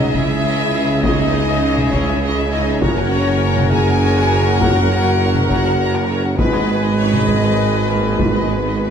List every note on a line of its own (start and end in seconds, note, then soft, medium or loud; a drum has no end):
0.00 2.78 C#2 medium
0.00 2.82 C#2 loud
0.00 2.64 C#3 medium
0.00 2.78 C#3 medium
0.00 0.10 F#3 medium
0.00 2.80 C#4 loud
0.00 0.13 D#4 loud
0.00 2.78 G#4 medium
0.00 2.81 G#4 medium
0.00 0.15 G#4 medium
0.00 2.79 C#5 loud
0.00 0.13 D#5 loud
0.00 0.17 D#5 loud
0.00 0.16 D#5 medium
0.00 0.15 E5 medium
0.00 2.81 G#5 loud
0.00 taiko mid medium
0.14 2.64 E3 medium
0.14 1.04 E4 loud
0.14 0.30 E4 medium
0.14 0.31 C#5 medium
0.14 0.29 D#5 medium
0.14 1.03 E5 loud
0.14 taiko medium
0.30 0.45 G#4 medium
0.30 0.45 D#5 medium
0.30 0.44 E5 medium
0.44 0.59 E4 medium
0.44 0.59 C#5 medium
0.44 0.58 D#5 medium
0.59 0.75 G#4 medium
0.59 0.75 D#5 medium
0.59 0.74 E5 medium
0.74 0.89 E4 medium
0.74 0.89 C#5 medium
0.74 0.89 D#5 medium
0.88 1.04 G#4 medium
0.88 1.04 D#5 medium
0.88 1.04 E5 medium
1.03 1.91 D#4 loud
1.03 1.18 E4 medium
1.03 1.17 C#5 medium
1.03 1.92 D#5 loud
1.03 1.94 D#5 loud
1.03 1.18 D#5 medium
1.03 taiko loud
1.18 1.34 G#4 medium
1.18 1.34 D#5 medium
1.18 1.33 E5 medium
1.34 1.49 E4 medium
1.34 1.49 C#5 medium
1.34 1.49 D#5 medium
1.48 1.64 G#4 medium
1.48 1.64 D#5 medium
1.48 1.63 E5 medium
1.62 1.77 E4 medium
1.62 1.76 C#5 medium
1.62 1.77 D#5 medium
1.77 1.93 G#4 medium
1.77 1.93 D#5 medium
1.77 1.93 E5 medium
1.77 taiko mid medium
1.91 2.23 C#4 loud
1.91 2.07 E4 medium
1.91 2.22 C#5 loud
1.91 2.07 C#5 medium
1.91 2.22 C#5 loud
1.91 2.08 D#5 medium
1.91 taiko loud
2.07 2.22 G#4 medium
2.07 2.22 D#5 medium
2.07 2.23 E5 medium
2.21 2.36 E4 medium
2.21 2.36 C#5 medium
2.21 2.37 D#5 loud
2.37 2.52 G#4 medium
2.37 2.52 D#5 medium
2.37 2.53 E5 medium
2.51 2.79 D#4 loud
2.51 2.67 E4 medium
2.51 2.66 C#5 medium
2.51 2.84 D#5 loud
2.51 2.79 D#5 loud
2.51 2.68 D#5 medium
2.65 2.81 G#4 medium
2.65 2.81 D#5 medium
2.65 2.83 E5 medium
2.80 6.40 F#1 loud
2.80 6.38 F#1 loud
2.80 6.38 F#2 loud
2.80 6.34 C#3 loud
2.80 6.34 F#3 loud
2.80 6.34 C#4 loud
2.80 3.71 C#4 loud
2.80 2.95 F#4 medium
2.80 6.37 A#4 loud
2.80 6.21 A#4 loud
2.80 6.34 C#5 loud
2.80 2.95 C#5 medium
2.80 3.70 C#5 loud
2.80 3.73 C#5 loud
2.80 6.38 F#5 loud
2.80 2.97 A#5 medium
2.80 taiko loud
2.95 3.11 A#4 medium
2.95 3.12 F#5 medium
3.10 3.26 F#4 medium
3.10 3.26 C#5 medium
3.10 3.27 A#5 medium
3.26 3.42 A#4 medium
3.26 3.43 F#5 medium
3.40 3.56 F#4 medium
3.40 3.55 C#5 medium
3.40 3.57 A#5 medium
3.56 3.72 A#4 medium
3.56 3.73 F#5 medium
3.56 taiko mid medium
3.71 3.87 F#4 medium
3.71 4.59 G#4 loud
3.71 3.87 C#5 medium
3.71 4.61 G#5 loud
3.71 4.60 G#5 loud
3.71 3.88 A#5 medium
3.71 taiko medium
3.86 4.02 A#4 medium
3.86 4.02 F#5 medium
4.01 4.16 F#4 medium
4.01 4.16 C#5 medium
4.01 4.16 A#5 medium
4.16 4.31 A#4 medium
4.16 4.33 F#5 medium
4.16 taiko rim soft
4.31 4.47 F#4 loud
4.31 4.46 C#5 medium
4.31 4.47 A#5 medium
4.46 4.61 A#4 medium
4.46 4.62 F#5 medium
4.61 5.47 F#4 loud
4.61 4.75 F#4 loud
4.61 4.75 C#5 loud
4.61 5.48 F#5 loud
4.61 4.75 A#5 medium
4.61 taiko loud
4.74 4.90 A#4 medium
4.74 4.92 F#5 medium
4.90 5.05 F#4 medium
4.90 5.05 C#5 medium
4.90 5.06 A#5 medium
5.06 5.21 A#4 medium
5.06 5.21 F#5 medium
5.20 5.34 F#4 medium
5.20 5.34 C#5 medium
5.20 5.34 A#5 medium
5.35 5.50 A#4 medium
5.35 5.50 F#5 medium
5.35 taiko mid medium
5.48 6.07 F#4 loud
5.48 5.65 F#4 medium
5.48 5.65 C#5 medium
5.48 6.07 F#5 loud
5.48 6.08 F#5 loud
5.48 5.65 A#5 medium
5.48 taiko medium
5.64 5.79 A#4 medium
5.64 5.79 F#5 medium
5.79 5.93 F#4 medium
5.79 5.93 C#5 medium
5.79 5.94 A#5 medium
5.93 6.08 A#4 medium
5.93 6.09 F#5 medium
5.93 taiko rim soft
6.08 6.23 F#4 medium
6.08 6.23 C#5 medium
6.08 6.24 A#5 medium
6.23 6.38 A#4 medium
6.23 6.39 F#5 medium
6.37 8.90 G#1 loud
6.37 8.90 G#2 loud
6.37 8.90 D#3 loud
6.37 8.90 G#3 loud
6.37 8.90 G#3 medium
6.37 6.94 B3 loud
6.37 8.90 G#4 loud
6.37 6.52 G#4 medium
6.37 6.94 B4 loud
6.37 8.90 B4 loud
6.37 6.52 B4 medium
6.37 6.94 B4 loud
6.37 6.52 B4 medium
6.37 8.90 D#5 loud
6.37 8.90 G#5 loud
6.37 taiko loud
6.53 6.67 G#4 medium
6.53 6.66 B4 medium
6.53 6.68 D#5 medium
6.53 taiko rim soft
6.68 6.82 G#4 medium
6.68 6.82 B4 medium
6.68 6.83 B4 medium
6.83 6.97 G#4 medium
6.83 6.97 B4 medium
6.83 6.98 D#5 medium
6.97 7.27 C#4 loud
6.97 7.12 G#4 medium
6.97 7.12 B4 medium
6.97 7.29 C#5 loud
7.13 7.29 G#4 medium
7.13 7.28 B4 medium
7.13 7.28 D#5 medium
7.13 taiko mid medium
7.27 7.89 D#4 loud
7.27 7.44 G#4 medium
7.27 7.44 B4 medium
7.27 7.43 B4 medium
7.27 7.90 D#5 loud
7.27 7.88 D#5 loud
7.27 taiko medium
7.44 7.58 G#4 medium
7.44 7.58 B4 medium
7.44 7.59 D#5 medium
7.44 taiko rim soft
7.58 7.73 G#4 medium
7.58 7.73 B4 medium
7.74 7.89 G#4 medium
7.74 7.89 B4 medium
7.74 7.89 D#5 medium
7.88 8.19 A#3 medium
7.88 8.04 G#4 medium
7.88 8.20 A#4 medium
7.88 8.04 B4 medium
8.04 8.19 G#4 medium
8.04 8.19 B4 medium
8.04 8.19 D#5 medium
8.18 8.90 B3 medium
8.18 8.34 G#4 medium
8.18 8.90 B4 medium
8.18 8.34 B4 medium
8.18 8.90 B4 medium
8.18 8.34 B4 medium
8.18 taiko loud
8.35 8.49 G#4 medium
8.35 8.49 B4 medium
8.35 8.50 D#5 medium
8.50 8.66 G#4 medium
8.50 8.65 B4 medium
8.50 8.66 B4 medium
8.65 8.81 G#4 medium
8.65 8.80 B4 medium
8.65 8.81 D#5 medium
8.81 8.90 G#4 medium
8.81 8.90 B4 medium